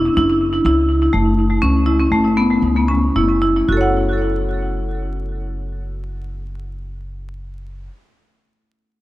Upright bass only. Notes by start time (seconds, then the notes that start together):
Already playing: E1
0.17 F#1
0.65 C#2
1.14 F#1
1.63 C#2
2.11 F#1
2.62 C#2
3.15 F#1
3.69 F#1